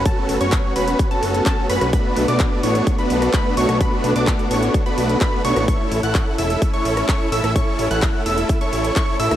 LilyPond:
<<
  \new Staff \with { instrumentName = "Digital synth lead" } { \time 4/4 \key b \dorian \tempo 4 = 128 a''8. cis'''8. b''8. a''8. a''8 b''8 | b''8. d'''8. cis'''8. b''8. b''8 cis'''8 | b''8. d'''8. cis'''8. b''8. b''8 cis'''8 | cis'''8. fis'''8. e'''8. cis'''8. cis'''8 e'''8 |
cis'''8. fis'''8. e'''8. cis'''8. cis'''8 e'''8 | }
  \new Staff \with { instrumentName = "Supersaw synth" } { \time 4/4 \key b \dorian <cis' fis' a'>8. <cis' fis' cis''>8. <cis' fis' b'>8. <cis' fis' a'>8. <cis' fis'>8 <cis' fis' b'>8 | <a b d' fis'>8. <a b d' fis' d''>8. <a b d' fis' cis''>8. <a b d' fis' b'>8. <a b d' b'>8 <a b d' fis' cis''>8 | <a b d' fis' b'>8. <a b d' fis' d''>8. <a b d' fis' cis''>8. <a b d' fis' b'>8. fis'8 <a b d' fis' cis''>8 | <e' a'>8. <e' a' fis''>8. <e' a' e''>8. <e' a' cis''>8. <e' a' cis''>8 <e' a' e''>8 |
<e' a' cis''>8. <e' a' fis''>8. <e' a' e''>8. <e' a' cis''>8. <e' a' cis''>8 <e' a' e''>8 | }
  \new Staff \with { instrumentName = "String section" } { \time 4/4 \key b \dorian << { <fis b>1 | d'1~ | d'1 | e'1~ |
e'1 | } \\ { a1~ | a1~ | a1 | cis'1~ |
cis'1 | } >> }
  \new Staff \with { instrumentName = "Analog synth bass" } { \clef bass \time 4/4 \key b \dorian fis,,16 r16 fis,,16 fis,,8 r16 e,,8 r8 fis,,8 r8 fis,,16 b,,16~ | b,,16 r16 b,,16 b,,8 r16 a,,8 r8 b,,8 r8 b,,16 b,,16~ | b,,16 r16 b,,16 b,,8 r16 a,,8 r8 b,,8 r8 b,,16 a,,16~ | a,,16 r16 a,,16 a,,8 r16 e,,8 r8 a,,8 r8 a,,16 a,,16~ |
a,,16 r16 a,,16 a,,8 r16 e,,8 r8 a,,8 r8 a,,16 d,16 | }
  \new DrumStaff \with { instrumentName = "Drums" } \drummode { \time 4/4 <hh bd>8 hho16 hh16 <hc hh bd>8 hho16 hh16 <hh bd>16 hh16 hho16 hh16 <hc hh bd>8 hho16 <hh ss>16 | <hh bd>8 hho16 hh16 <hc hh bd>8 hho16 hh16 <hh bd>16 hh16 hho16 <hh ss>16 <hc hh bd>8 hho16 <hh ss>16 | <hh bd>8 hho16 hh16 <hc hh bd>16 hh16 hho16 hh16 <hh bd>16 hh16 hho16 hh16 <hc hh bd>8 hho16 <hh ss>16 | <hh bd>8 hho16 hh16 <hc hh bd>8 hho16 hh16 <hh bd>16 hh16 hho16 <hh ss>16 <hc hh bd>8 hho16 <hh ss>16 |
<hh bd>8 hho16 hh16 <hc hh bd>8 hho16 hh16 <hh bd>16 hh16 hho16 hh16 <hc hh bd>8 hho16 <hh ss>16 | }
>>